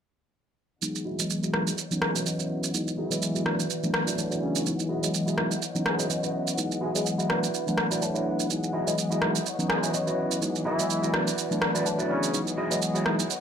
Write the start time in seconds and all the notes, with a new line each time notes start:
0.81 E3 F#3 G#3 B3 D#4 G#4 D#5 F#5, shaker
0.95 shaker
1.05 E4 F#4 G#4 D#5
1.19 E3 F#3 G#3 B3 D#5, shaker
1.30 shaker
1.42 E4 F#4 G#4 D#5, shaker
1.53 E3 F#3 G#3 B3 D#4, cross-stick
1.67 shaker
1.78 B4 C#5, shaker
1.91 E3 F#3 B3 C#4 D#4, shaker
2.02 G#3 G#4, cross-stick
2.15 E4 F#4 B4 C#5 D#5, shaker
2.25 E3 F#3 B3 C#4 D#5, shaker
2.39 E4 F#4 B4 C#5 D#5, shaker
2.64 shaker
2.73 E3 F#3 G#3 B3 D#4 G#4, shaker
2.88 shaker
2.97 E3 E4 F#4 G#4 D#5
3.11 E3 F#3 G#3 B3 D#5, shaker
3.22 shaker
3.34 E4 F#4 G#4 D#5, shaker
3.45 E3 F#3 A3 B3 D4 E4 F#4 B4 D5 F#5, cross-stick
3.60 shaker
3.70 shaker
3.83 E3 F#3 A3 B3 D4, shaker
3.94 cross-stick
4.06 E4 F#4 B4 D5, shaker
4.17 E3 F#3 A3 B3 D4, shaker
4.31 E4 F#4 B4 D5, shaker
4.42 C#3 C#4
4.56 shaker
4.65 E3 F#3 G#3 B3 D#4 G#4 D#5, shaker
4.80 shaker
4.89 E4 F#4 G#4 D#5
5.02 E3 F#3 G#3 B3 D#5, shaker
5.14 shaker
5.26 E4 F#4 G#4 D#5, shaker
5.37 E3 F#3 G#3 B3 D#4, cross-stick
5.51 shaker
5.61 B4 C#5, shaker
5.75 E3 F#3 B3 C#4 D#4, shaker
5.86 G#3 G#4, cross-stick
5.98 E4 F#4 B4 C#5 D#5, shaker
6.09 E3 F#3 B3 C#4 D#5, shaker
6.23 E4 F#4 B4 C#5 D#5, shaker
6.48 shaker
6.57 E3 F#3 G#3 B3 D#4 G#4, shaker
6.72 shaker
6.81 G#3 E4 F#4 G#4 D#5
6.95 E3 F#3 G#3 B3 G#4 D#5, shaker
7.06 shaker
7.18 E4 F#4 G#4 D#5, shaker
7.29 E3 F#3 A3 B3 D4 E4 F#4 B4 D5, cross-stick
7.44 shaker
7.54 shaker
7.67 E3 F#3 A3 B3 D4, shaker
7.78 cross-stick
7.90 E4 F#4 B4 D5, shaker
8.01 E3 F#3 A3 B3 D4, shaker
8.14 E4 F#4 B4 C#5, shaker
8.40 shaker
8.49 E3 F#3 G#3 B3 D#4 G#4 D#5, shaker
8.64 shaker
8.73 E4 F#4 G#4 D#5
8.87 E3 F#3 G#3 B3 D#5, shaker
8.98 shaker
9.11 E4 F#4 G#4 D#5, shaker
9.21 E3 F#3 G#3 B3 D#4, cross-stick
9.36 shaker
9.45 B4 C#5, shaker
9.59 E3 F#3 B3 C#4 D#4, shaker
9.70 G#3 G#4, cross-stick
9.83 E4 F#4 B4 C#5 D#5, shaker
9.93 E3 F#3 B3 C#4 D#5, shaker
10.07 E4 F#4 B4 C#5 D#5, shaker
10.32 shaker
10.41 E3 F#3 G#3 B3 D#4 G#4, shaker
10.56 shaker
10.65 E3 E4 F#4 G#4 D#5
10.79 E3 F#3 G#3 B3 D#5, shaker
10.90 shaker
11.02 E4 F#4 G#4 D#5, shaker
11.13 E3 F#3 A3 B3 D4 E4 F#4 B4 D5, cross-stick
11.28 shaker
11.38 shaker
11.51 E3 F#3 A3 B3 D4, shaker
11.62 cross-stick
11.74 E4 F#4 B4 D5, shaker
11.85 E3 F#3 A3 B3 D4, shaker
11.98 E4 F#4 B4 D5, shaker
12.10 C#3 C#4
12.23 shaker
12.33 E3 F#3 G#3 B3 D#4 G#4 D#5, shaker
12.46 tambourine, shaker
12.57 E4 F#4 G#4 D#5
12.71 E3 F#3 G#3 B3 D#5, shaker
12.82 shaker
12.95 E4 F#4 G#4 C#5, shaker
13.05 E3 F#3 G#3 B3 D#4, cross-stick
13.20 shaker
13.30 B4 C#5 D#5 F#5, shaker